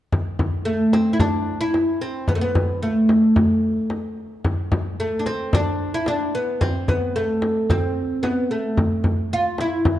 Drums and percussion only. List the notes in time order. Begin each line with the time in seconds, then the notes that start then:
0.12 frame drum
0.39 frame drum
0.93 frame drum
1.19 frame drum
1.74 frame drum
2.28 frame drum
2.55 frame drum
3.09 frame drum
3.36 frame drum
3.90 frame drum
4.44 frame drum
4.72 frame drum
5.26 frame drum
5.53 frame drum
6.06 frame drum
6.61 frame drum
6.88 frame drum
7.42 frame drum
7.70 frame drum
8.24 frame drum
8.77 frame drum
9.04 frame drum
9.58 frame drum
9.85 frame drum